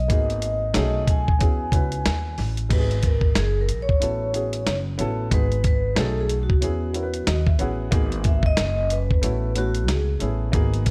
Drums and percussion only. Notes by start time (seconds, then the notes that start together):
0.10 kick, closed hi-hat
0.30 closed hi-hat
0.42 closed hi-hat
0.74 snare, closed hi-hat
1.07 kick, closed hi-hat
1.28 kick
1.41 kick, closed hi-hat
1.72 kick, closed hi-hat
1.92 closed hi-hat
2.06 snare, closed hi-hat
2.38 snare, open hi-hat
2.57 closed hi-hat
2.70 kick, closed hi-hat, crash
2.91 closed hi-hat
3.03 kick, closed hi-hat
3.21 kick
3.35 snare, closed hi-hat
3.69 closed hi-hat
3.89 kick
4.02 closed hi-hat
4.34 closed hi-hat
4.53 closed hi-hat
4.67 snare, closed hi-hat
4.99 closed hi-hat
5.31 kick, closed hi-hat
5.52 closed hi-hat
5.64 kick, closed hi-hat
5.96 snare, closed hi-hat
6.29 closed hi-hat
6.50 kick
6.62 closed hi-hat
6.94 closed hi-hat
7.14 closed hi-hat
7.27 snare, closed hi-hat
7.47 kick
7.59 closed hi-hat
7.92 kick, closed hi-hat
8.12 closed hi-hat
8.24 kick, closed hi-hat
8.43 kick
8.57 snare, closed hi-hat
8.90 closed hi-hat
9.11 kick
9.23 closed hi-hat
9.55 closed hi-hat
9.75 closed hi-hat
9.88 snare, closed hi-hat
10.20 closed hi-hat
10.53 kick, closed hi-hat
10.74 closed hi-hat
10.86 kick, closed hi-hat